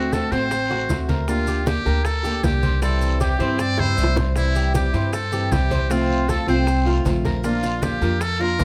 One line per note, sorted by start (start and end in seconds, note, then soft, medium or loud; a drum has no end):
0.00 0.26 D2 medium
0.00 0.11 D3 medium
0.00 0.12 A3 medium
0.00 0.12 C4 medium
0.00 0.13 C4 medium
0.00 0.13 F#4 medium
0.00 0.15 F#4 medium
0.12 0.31 D3 soft
0.12 0.31 A3 soft
0.12 0.31 C4 medium
0.12 0.30 F#4 medium
0.12 0.33 A4 medium
0.12 0.32 A4 medium
0.12 high bongo soft
0.12 high conga medium
0.12 short guiro medium
0.12 maracas medium
0.31 0.86 A1 medium
0.31 0.50 A3 medium
0.31 0.69 C4 medium
0.31 0.50 C4 medium
0.31 0.50 F#4 medium
0.31 1.09 C5 loud
0.31 high bongo soft
0.31 high conga soft
0.31 short guiro medium
0.31 maracas soft
0.50 muted steel-string acoustic guitar stroke medium
0.50 high bongo medium
0.50 high conga soft
0.50 long guiro medium
0.50 maracas medium
0.70 0.88 A3 medium
0.70 0.89 C4 medium
0.70 0.89 F#4 medium
0.70 1.08 F#4 medium
0.70 high bongo soft
0.70 high conga soft
0.89 1.80 D2 medium
0.89 1.26 D3 soft
0.89 1.27 A3 soft
0.89 1.28 C4 medium
0.89 1.28 F#4 medium
0.89 high bongo soft
0.89 low bongo medium
0.89 high conga medium
0.89 short guiro medium
0.89 maracas medium
1.09 1.46 A#4 medium
1.09 high bongo soft
1.09 high conga medium
1.09 short guiro medium
1.09 maracas soft
1.27 1.64 D3 medium
1.27 1.65 A#3 medium
1.27 1.66 D4 medium
1.27 1.68 F4 medium
1.27 1.66 G4 medium
1.27 high bongo medium
1.27 high conga soft
1.27 long guiro medium
1.27 maracas medium
1.47 1.85 G4 medium
1.47 high conga soft
1.47 maracas medium
1.65 1.85 D3 soft
1.65 1.85 A#3 medium
1.65 1.85 D4 medium
1.65 2.06 G4 medium
1.65 1.84 G4 soft
1.65 high bongo medium
1.65 high conga medium
1.65 short guiro medium
1.65 maracas medium
1.85 2.40 D2 medium
1.85 2.03 A#3 medium
1.85 2.04 D4 medium
1.85 2.04 G4 medium
1.85 2.23 A#4 medium
1.85 high bongo soft
1.85 high conga soft
1.85 short guiro medium
1.85 maracas soft
2.04 2.45 A4 loud
2.04 muted steel-string acoustic guitar stroke medium
2.04 high bongo medium
2.04 high conga soft
2.04 long guiro medium
2.04 maracas medium
2.23 2.42 A#3 medium
2.23 2.43 D4 medium
2.23 2.42 G4 medium
2.23 2.62 G4 medium
2.23 high bongo soft
2.23 high conga soft
2.23 maracas medium
2.43 3.34 C2 medium
2.43 2.81 D3 soft
2.43 2.81 A#3 medium
2.43 2.82 D4 medium
2.43 2.82 G4 medium
2.43 2.82 G4 soft
2.43 high bongo soft
2.43 low bongo medium
2.43 high conga medium
2.43 short guiro medium
2.43 maracas medium
2.62 2.82 C5 medium
2.62 high bongo soft
2.62 high conga medium
2.62 short guiro medium
2.62 maracas soft
2.81 3.19 C3 medium
2.81 3.19 E3 medium
2.81 3.19 G3 medium
2.81 3.19 C4 medium
2.81 3.20 C4 medium
2.81 3.20 E4 medium
2.81 3.18 A4 medium
2.81 high bongo medium
2.81 long guiro medium
2.81 maracas medium
3.01 high conga soft
3.01 maracas medium
3.20 3.39 E3 medium
3.20 3.39 G3 soft
3.20 3.38 C4 medium
3.20 3.37 E4 medium
3.20 3.39 G4 medium
3.20 3.61 G4 medium
3.20 high bongo medium
3.20 high conga medium
3.20 short guiro medium
3.20 maracas medium
3.39 3.93 G2 medium
3.39 3.58 E3 medium
3.39 3.58 G3 medium
3.39 3.58 C4 medium
3.39 3.77 C4 medium
3.39 3.58 E4 medium
3.39 high bongo soft
3.39 high conga soft
3.39 short guiro medium
3.39 maracas soft
3.59 3.81 D5 loud
3.59 muted steel-string acoustic guitar stroke medium
3.59 high bongo medium
3.59 high conga soft
3.59 long guiro medium
3.59 maracas medium
3.77 3.96 E3 medium
3.77 3.97 G3 medium
3.77 3.97 C4 medium
3.77 3.96 E4 medium
3.77 4.16 E4 medium
3.77 4.17 C5 loud
3.77 high bongo medium
3.77 high conga medium
3.97 4.88 C2 medium
3.97 4.35 E3 soft
3.97 4.35 G3 soft
3.97 4.36 C4 soft
3.97 4.36 E4 medium
3.97 short guiro medium
3.97 maracas medium
4.04 low bongo medium
4.16 4.54 C5 medium
4.16 low bongo loud
4.16 low conga medium
4.16 short guiro medium
4.16 maracas soft
4.35 4.73 C3 medium
4.35 4.73 E3 medium
4.35 4.73 G3 medium
4.35 4.74 C4 medium
4.35 4.72 E4 medium
4.35 4.74 E4 medium
4.35 high bongo medium
4.35 high conga soft
4.35 long guiro medium
4.35 maracas medium
4.55 4.93 G4 medium
4.55 high conga soft
4.55 maracas medium
4.74 4.93 E3 medium
4.74 4.93 G3 medium
4.74 4.93 C4 medium
4.74 4.92 E4 medium
4.74 5.15 G4 medium
4.74 high bongo medium
4.74 high conga medium
4.74 short guiro medium
4.74 maracas medium
4.93 5.47 G2 medium
4.93 5.12 E3 medium
4.93 5.12 G3 medium
4.93 5.12 C4 medium
4.93 5.12 E4 medium
4.93 5.31 C5 medium
4.93 high bongo soft
4.93 high conga soft
4.93 short guiro medium
4.93 maracas soft
5.13 5.54 A4 loud
5.13 muted steel-string acoustic guitar stroke medium
5.13 high bongo medium
5.13 high conga soft
5.13 long guiro medium
5.13 maracas medium
5.32 5.49 E3 soft
5.32 5.50 G3 medium
5.32 5.51 C4 medium
5.32 5.50 E4 medium
5.32 5.70 G4 medium
5.32 high bongo soft
5.32 high conga soft
5.32 maracas medium
5.51 6.42 C2 medium
5.51 5.89 E3 soft
5.51 5.89 G3 soft
5.51 5.90 C4 soft
5.51 5.90 E4 medium
5.51 5.92 G4 medium
5.51 high bongo soft
5.51 low bongo medium
5.51 high conga medium
5.51 short guiro medium
5.51 maracas medium
5.71 5.90 C5 medium
5.71 high bongo soft
5.71 high conga medium
5.71 short guiro medium
5.71 maracas soft
5.89 6.27 C3 medium
5.89 6.27 F3 medium
5.89 6.27 A3 medium
5.89 6.28 C4 medium
5.89 6.31 F4 medium
5.89 6.28 F4 medium
5.89 high bongo medium
5.89 high conga soft
5.89 long guiro medium
5.89 maracas medium
6.10 high conga soft
6.28 6.47 F3 medium
6.28 6.47 A3 soft
6.28 6.46 C4 medium
6.28 6.45 F4 medium
6.28 6.47 A4 medium
6.28 6.48 A4 medium
6.28 high bongo medium
6.28 high conga medium
6.28 short guiro medium
6.28 maracas medium
6.47 7.01 C2 medium
6.47 6.66 F3 medium
6.47 6.66 A3 medium
6.47 6.66 C4 medium
6.47 6.85 C4 medium
6.47 6.66 F4 medium
6.47 6.95 C5 medium
6.47 high bongo soft
6.47 high conga soft
6.47 short guiro medium
6.47 maracas soft
6.67 muted steel-string acoustic guitar stroke medium
6.67 high bongo medium
6.67 high conga soft
6.67 long guiro medium
6.67 maracas medium
6.85 7.03 F3 soft
6.85 7.04 A3 medium
6.85 7.05 C4 medium
6.85 7.04 F4 medium
6.85 7.24 F4 medium
6.85 high bongo soft
6.85 high conga soft
7.04 7.95 A#1 medium
7.04 7.42 F3 soft
7.04 7.43 A3 soft
7.04 7.44 C4 medium
7.04 7.44 F4 soft
7.04 high bongo soft
7.04 low bongo medium
7.04 high conga medium
7.04 short guiro medium
7.04 maracas medium
7.25 7.62 A#4 medium
7.25 high bongo soft
7.25 high conga medium
7.25 short guiro medium
7.25 maracas soft
7.43 7.81 F3 medium
7.43 7.81 A#3 medium
7.43 7.82 D4 medium
7.43 7.84 F4 medium
7.43 7.82 F4 medium
7.43 high bongo medium
7.43 high conga soft
7.43 long guiro medium
7.43 maracas medium
7.63 8.01 F4 medium
7.63 high conga soft
7.63 maracas medium
7.82 8.01 F3 soft
7.82 8.01 A#3 medium
7.82 8.01 D4 medium
7.82 8.00 F4 medium
7.82 8.23 G4 medium
7.82 high bongo soft
7.82 high conga medium
7.82 short guiro medium
7.82 maracas medium
8.01 8.55 F2 medium
8.01 8.20 A#3 medium
8.01 8.20 D4 medium
8.01 8.20 F4 medium
8.01 8.39 A#4 medium
8.01 high bongo soft
8.01 high conga soft
8.01 short guiro medium
8.01 maracas soft
8.20 8.42 A4 loud
8.20 muted steel-string acoustic guitar stroke medium
8.20 high bongo medium
8.20 high conga soft
8.20 long guiro medium
8.20 maracas medium
8.39 8.58 A#3 medium
8.39 8.59 D4 medium
8.39 8.58 F4 medium
8.39 8.64 F4 medium
8.39 8.64 A#4 loud
8.39 high bongo soft
8.39 high conga soft
8.59 8.64 C2 medium
8.59 8.64 F3 soft
8.59 8.64 A#3 medium
8.59 8.64 D4 medium
8.59 8.64 F4 soft
8.59 high bongo soft
8.59 low bongo medium
8.59 high conga medium
8.59 short guiro medium
8.59 maracas medium